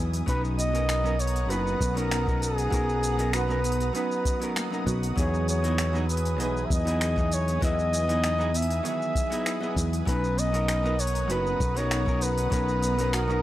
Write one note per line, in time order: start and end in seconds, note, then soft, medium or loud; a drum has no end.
0.00 0.21 E2 loud
0.00 0.23 F#3 medium
0.00 0.24 B3 medium
0.00 0.24 E4 medium
0.00 0.34 E4 medium
0.00 0.25 G#4 medium
0.00 1.32 G#4 medium
0.00 0.24 D#5 medium
0.00 0.24 G#5 medium
0.00 10.03 D#6 loud
0.13 open hi-hat soft
0.13 shaker soft
0.26 1.50 B1 loud
0.26 0.70 F#3 medium
0.26 0.70 B3 medium
0.26 13.42 B3 medium
0.26 0.71 C#4 medium
0.26 2.10 D#4 medium
0.26 0.71 D#4 medium
0.26 0.43 B4 loud
0.26 0.71 B4 loud
0.26 5.14 F#5 medium
0.26 5.13 A#5 medium
0.26 kick loud
0.26 open hi-hat medium
0.26 shaker soft
0.45 shaker soft
0.59 1.22 D#5 loud
0.59 open hi-hat soft
0.59 shaker medium
0.73 1.00 F#3 medium
0.73 1.01 B3 medium
0.73 1.01 C#4 medium
0.73 1.01 D#4 medium
0.73 1.02 A#4 medium
0.73 open hi-hat soft
0.73 shaker soft
0.89 2.72 A#4 medium
0.89 finger snap loud
0.89 open hi-hat medium
0.89 shaker soft
1.04 1.14 F#3 medium
1.04 1.14 B3 medium
1.04 1.15 C#4 medium
1.04 1.15 D#4 medium
1.04 1.16 A#4 medium
1.04 shaker soft
1.19 1.52 C#5 loud
1.19 open hi-hat soft
1.19 shaker medium
1.27 open hi-hat soft
1.36 open hi-hat soft
1.36 shaker soft
1.48 1.74 F#1 loud
1.48 1.92 F#3 medium
1.48 1.93 B3 medium
1.48 1.93 C#4 medium
1.48 1.93 D#4 medium
1.48 3.33 F#4 medium
1.48 1.99 B4 loud
1.48 1.94 B4 medium
1.48 open hi-hat soft
1.48 shaker soft
1.67 shaker soft
1.80 2.67 B1 loud
1.80 kick loud
1.80 shaker medium
1.95 2.23 F#3 medium
1.95 2.23 B3 medium
1.95 2.23 C#4 medium
1.95 2.24 D#4 medium
1.95 2.44 A#4 medium
1.95 2.24 A#4 medium
1.95 open hi-hat soft
1.95 shaker soft
2.11 3.94 D#4 medium
2.11 finger snap loud
2.11 open hi-hat medium
2.11 shaker soft
2.26 2.68 F#3 medium
2.26 2.69 B3 medium
2.26 2.69 C#4 medium
2.26 2.69 D#4 medium
2.26 2.70 A#4 medium
2.26 kick loud
2.26 shaker soft
2.42 3.36 G#4 loud
2.42 open hi-hat soft
2.42 shaker medium
2.58 open hi-hat soft
2.58 shaker soft
2.70 3.90 B1 medium
2.70 3.14 F#3 medium
2.70 3.15 B3 medium
2.70 3.15 C#4 medium
2.70 3.16 D#4 medium
2.70 4.84 A#4 medium
2.70 3.16 A#4 loud
2.70 kick loud
2.70 open hi-hat medium
2.70 shaker soft
2.89 shaker soft
3.03 open hi-hat soft
3.03 shaker medium
3.17 3.45 F#3 medium
3.17 3.45 B3 medium
3.17 3.46 C#4 medium
3.17 3.46 D#4 medium
3.17 3.47 A#4 medium
3.17 open hi-hat soft
3.17 shaker soft
3.33 4.86 F#4 medium
3.33 3.95 B4 loud
3.33 finger snap loud
3.33 open hi-hat medium
3.33 shaker soft
3.48 3.59 F#3 medium
3.48 3.59 B3 medium
3.48 3.60 C#4 medium
3.48 3.60 D#4 medium
3.48 3.60 A#4 medium
3.48 shaker soft
3.64 open hi-hat soft
3.64 shaker medium
3.72 open hi-hat soft
3.80 open hi-hat soft
3.80 shaker soft
3.93 4.37 F#3 medium
3.93 4.37 B3 medium
3.93 4.38 C#4 medium
3.93 5.84 D#4 medium
3.93 4.38 D#4 medium
3.93 4.52 B4 medium
3.93 4.39 B4 medium
3.93 open hi-hat medium
3.93 shaker soft
4.12 shaker soft
4.25 kick loud
4.25 open hi-hat soft
4.25 shaker medium
4.40 4.68 F#3 medium
4.40 4.68 B3 medium
4.40 4.68 C#4 medium
4.40 4.69 D#4 medium
4.40 4.69 A#4 medium
4.40 open hi-hat soft
4.40 shaker soft
4.56 7.77 A#3 medium
4.56 finger snap loud
4.56 open hi-hat medium
4.56 shaker soft
4.70 5.13 F#3 medium
4.70 5.14 C#4 medium
4.70 5.14 D#4 medium
4.70 5.15 A#4 medium
4.70 shaker soft
4.86 5.11 B1 loud
4.86 7.30 F#4 loud
4.86 kick medium
4.86 open hi-hat soft
4.86 shaker medium
5.03 open hi-hat soft
5.03 shaker soft
5.16 6.40 E2 medium
5.16 5.59 F#3 medium
5.16 5.60 B3 medium
5.16 5.60 D#4 medium
5.16 5.61 E4 medium
5.16 7.00 G#4 medium
5.16 5.61 G#4 loud
5.16 5.47 C#5 medium
5.16 10.03 G#5 medium
5.16 kick loud
5.16 open hi-hat medium
5.16 shaker soft
5.34 shaker soft
5.48 6.06 C#5 loud
5.48 open hi-hat soft
5.48 shaker medium
5.63 5.90 F#3 medium
5.63 5.90 B3 medium
5.63 5.91 D#4 medium
5.63 5.91 E4 medium
5.63 5.92 G#4 medium
5.63 open hi-hat soft
5.63 shaker soft
5.78 6.46 E4 medium
5.78 finger snap loud
5.78 open hi-hat medium
5.78 shaker soft
5.93 6.04 F#3 medium
5.93 6.04 B3 medium
5.93 6.04 D#4 medium
5.93 6.05 E4 medium
5.93 6.05 G#4 medium
5.93 shaker soft
6.09 6.39 B4 medium
6.09 open hi-hat soft
6.09 shaker medium
6.17 open hi-hat medium
6.25 open hi-hat soft
6.25 shaker soft
6.38 6.64 B1 loud
6.38 6.83 E3 medium
6.38 6.82 F#3 medium
6.38 6.82 B3 medium
6.38 7.68 D#4 medium
6.38 6.84 G#4 medium
6.38 6.67 B4 medium
6.38 6.83 D#5 medium
6.38 open hi-hat soft
6.38 shaker soft
6.57 shaker soft
6.66 6.74 E5 medium
6.70 7.57 E2 loud
6.70 7.36 D#5 loud
6.70 kick loud
6.70 shaker medium
6.85 7.13 F#3 medium
6.85 7.13 B3 medium
6.85 7.13 D#4 medium
6.85 7.14 E4 medium
6.85 7.14 G#4 medium
6.85 open hi-hat soft
6.85 shaker soft
7.01 8.84 G#4 medium
7.01 finger snap medium
7.01 open hi-hat medium
7.01 shaker soft
7.16 7.59 E3 medium
7.16 7.58 F#3 medium
7.16 7.59 B3 medium
7.16 7.59 D#4 medium
7.16 7.60 G#4 medium
7.16 kick loud
7.16 shaker soft
7.31 7.63 C#5 loud
7.31 open hi-hat soft
7.31 shaker medium
7.48 open hi-hat soft
7.48 shaker soft
7.61 8.80 E2 medium
7.61 8.04 F#3 medium
7.61 8.05 B3 medium
7.61 8.29 E4 medium
7.61 8.06 E4 medium
7.61 8.06 G#4 loud
7.61 8.05 D#5 medium
7.61 kick loud
7.61 open hi-hat medium
7.61 shaker soft
7.65 8.58 D#5 loud
7.79 shaker soft
7.93 open hi-hat soft
7.93 shaker medium
8.07 8.35 F#3 medium
8.07 8.35 B3 medium
8.07 8.36 D#4 medium
8.07 8.36 E4 medium
8.07 8.37 G#4 medium
8.07 open hi-hat soft
8.07 shaker soft
8.23 9.52 D#4 medium
8.23 finger snap loud
8.23 open hi-hat medium
8.23 shaker soft
8.38 8.49 F#3 medium
8.38 8.49 B3 medium
8.38 8.49 D#4 medium
8.38 8.50 E4 medium
8.38 8.50 G#4 medium
8.38 shaker soft
8.54 8.86 E5 loud
8.54 open hi-hat soft
8.54 shaker medium
8.62 open hi-hat medium
8.70 open hi-hat soft
8.70 shaker soft
8.83 9.28 D#3 medium
8.83 9.28 E3 medium
8.83 9.27 F#3 medium
8.83 9.27 B3 medium
8.83 11.12 G#4 medium
8.83 9.28 G#4 medium
8.83 9.73 E5 loud
8.83 open hi-hat medium
8.83 shaker soft
9.02 shaker soft
9.15 kick loud
9.15 open hi-hat soft
9.15 shaker medium
9.30 9.57 F#3 medium
9.30 9.58 B3 medium
9.30 9.58 D#4 medium
9.30 9.59 E4 medium
9.30 9.59 G#4 medium
9.30 open hi-hat soft
9.30 shaker soft
9.46 10.13 E4 medium
9.46 finger snap loud
9.46 open hi-hat medium
9.46 shaker soft
9.60 10.03 F#3 medium
9.60 10.03 B3 medium
9.60 10.04 E4 medium
9.60 10.04 G#4 medium
9.60 10.04 D#5 medium
9.60 shaker soft
9.76 10.01 E2 loud
9.76 kick medium
9.76 open hi-hat soft
9.76 shaker medium
9.93 open hi-hat soft
9.93 shaker soft
10.05 11.29 B1 medium
10.05 10.49 F#3 medium
10.05 10.50 B3 medium
10.05 10.50 C#4 medium
10.05 11.90 D#4 medium
10.05 10.50 D#4 medium
10.05 10.41 B4 loud
10.05 10.51 B4 loud
10.05 13.42 F#5 medium
10.05 13.42 A#5 medium
10.05 13.42 D#6 loud
10.05 kick loud
10.05 open hi-hat medium
10.05 shaker soft
10.24 shaker soft
10.38 11.02 D#5 loud
10.38 open hi-hat soft
10.38 shaker medium
10.52 10.80 F#3 medium
10.52 10.80 B3 medium
10.52 10.81 C#4 medium
10.52 10.81 D#4 medium
10.52 10.81 A#4 medium
10.52 open hi-hat soft
10.52 shaker soft
10.68 12.51 A#4 medium
10.68 finger snap loud
10.68 open hi-hat medium
10.68 shaker soft
10.83 10.94 F#3 medium
10.83 10.94 B3 medium
10.83 10.94 C#4 medium
10.83 10.95 D#4 medium
10.83 10.95 A#4 medium
10.83 shaker soft
10.99 11.33 C#5 loud
10.99 open hi-hat soft
10.99 shaker medium
11.07 open hi-hat medium
11.15 open hi-hat soft
11.15 shaker soft
11.28 11.54 F#1 medium
11.28 11.72 F#3 medium
11.28 11.72 B3 medium
11.28 11.73 C#4 medium
11.28 11.73 D#4 medium
11.28 13.13 F#4 medium
11.28 11.79 B4 loud
11.28 11.73 B4 medium
11.28 open hi-hat medium
11.28 shaker soft
11.47 shaker soft
11.60 12.47 B1 loud
11.60 kick loud
11.60 shaker medium
11.75 12.02 F#3 medium
11.75 12.03 B3 medium
11.75 12.03 C#4 medium
11.75 12.04 D#4 medium
11.75 12.04 A#4 medium
11.75 12.25 C#5 loud
11.75 open hi-hat soft
11.75 shaker soft
11.91 13.42 D#4 medium
11.91 finger snap loud
11.91 open hi-hat medium
11.91 shaker soft
12.05 12.48 F#3 medium
12.05 12.48 B3 medium
12.05 12.48 C#4 medium
12.05 12.49 D#4 medium
12.05 12.49 A#4 medium
12.05 kick loud
12.05 shaker soft
12.21 13.16 B4 loud
12.21 open hi-hat soft
12.21 shaker medium
12.38 open hi-hat soft
12.38 shaker soft
12.50 13.42 B1 loud
12.50 12.94 F#3 loud
12.50 12.94 B3 medium
12.50 12.95 C#4 medium
12.50 12.95 D#4 medium
12.50 13.42 A#4 medium
12.50 12.96 B4 loud
12.50 kick loud
12.50 open hi-hat medium
12.50 shaker soft
12.69 shaker soft
12.82 open hi-hat soft
12.82 shaker medium
12.97 13.25 F#3 medium
12.97 13.25 B3 medium
12.97 13.26 C#4 medium
12.97 13.26 D#4 medium
12.97 13.26 A#4 medium
12.97 open hi-hat soft
12.97 shaker soft
13.13 13.42 F#4 medium
13.13 13.42 A#4 loud
13.13 finger snap loud
13.13 open hi-hat medium
13.13 shaker soft
13.28 13.38 F#3 medium
13.28 13.39 B3 medium
13.28 13.39 C#4 medium
13.28 13.40 D#4 medium
13.28 13.40 A#4 loud
13.28 shaker soft